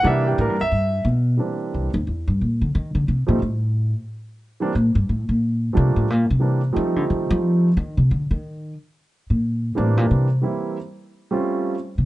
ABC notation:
X:1
M:4/4
L:1/8
Q:"Swing" 1/4=179
K:Cmix
V:1 name="Upright piano"
e G B e3 z2 | z8 | z8 | z8 |
z8 | z8 | z8 | z8 |
z8 |]
V:2 name="Upright piano"
[E,G,B,D]3 z4 z | [E,G,B,CD]3 z4 z | z3 [F,G,A,C_E] z4 | z3 [E,G,B,CD] z4 |
z2 [F,G,A,B,D]2 z2 [E,G,B,CD] z | [F,G,A,C_E]4- [F,G,A,CE] z3 | z8 | z2 [E,G,B,CD]3 z [E,G,B,CE]2 |
z3 [G,A,^B,^C^E]3 z2 |]
V:3 name="Upright bass" clef=bass
C,2 (3A,, G,, E,, G,,2 =B,,2 | z2 C,, _E,, =E,, G,, B,, D, | _E, D, C, B,, A,,3 z | z4 B,, G,, A,, B,,- |
B,,2 C, A,, B,, C,3 | F, D, _E, F,3 E, C, | D, _E,3 z3 B,,- | B,,2 A,, B,, C,2 z2 |
z6 z ^B,, |]